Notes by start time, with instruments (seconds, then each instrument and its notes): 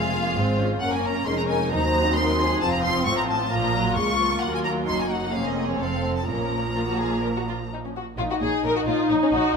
Already playing: double bass section F1, cello section F2, viola section G#3 C4, violin section F4 G#4 F5
0.14 viola section A#3
0.36 double bass section G#1, cello section G#2, viola section G#3 C4, violin section C5
0.58 viola section C#4
0.81 double bass section F#1, cello section F#2, viola section A#3, violin section C#4 A#4 F#5
0.93 violin section G#5
1.05 violin section A#5
1.26 double bass section F1, cello section F2, viola section G#3, violin section D#4 A#4 C6
1.37 violin section A#5
1.49 violin section G#5
1.71 double bass section D#2, cello section D#2, viola section F#3 D#4, violin section D#4 C5 A#5
1.94 violin section C4
2.16 violin section A#4 C6
2.39 violin section G#4
2.61 double bass section F1, cello section F2, viola section F3 C4, violin section C4 F4 A5
2.72 violin section A#5
2.83 violin section C6
3.06 double bass section A1, cello section A2, viola section F3, violin section F4 C#6
3.18 violin section A#5
3.28 violin section A5
3.51 double bass section A#1, cello section A#2, viola section F3 A#3, violin section A#5
3.75 viola section F#3
3.97 double bass section C#2, cello section C#2, viola section G#3, violin section C#6
4.20 viola section F3
4.41 double bass section D#2, cello section D#2, viola section F#3, violin section A#4 F#5
4.54 violin section G#5
4.64 violin section A#5
4.88 double bass section F#1, cello section F#2, violin section D#4 F#4 C6
4.99 violin section G#5
5.10 violin section F#5
5.33 double bass section F1, cello section F2, viola section A#3 C4, violin section C#4 G#4 F5
5.46 violin section D#5
5.68 violin section C#5
5.79 double bass section F1, cello section F2, viola section A3, violin section C4 A4 F5
6.16 violin section A5
6.28 double bass section A#1, cello section A#2, viola section F3 A#3, violin section C#4 A#4 A#5
6.76 violin section F4
6.88 violin section F#4
7.00 violin section G#4
7.23 violin section A#4
7.36 violin section F#4
7.48 violin section F4
7.73 violin section D#4
7.85 violin section C#4
7.96 violin section F#4
8.17 double bass section A#1, cello section A#2, viola section D#4, violin section F4 C#5
8.31 violin section F#4
8.41 double bass section A#1, cello section A#2, violin section G#4 C#5
8.63 double bass section A#1, cello section A#2, violin section A#4 C#5
8.76 violin section F#4
8.86 double bass section A#1, cello section A#2, violin section F4 C#5
9.09 double bass section A#1, cello section A#2, violin section D#4 C#5
9.23 violin section C#4
9.32 double bass section A#1, cello section A#2, violin section F#4 C#5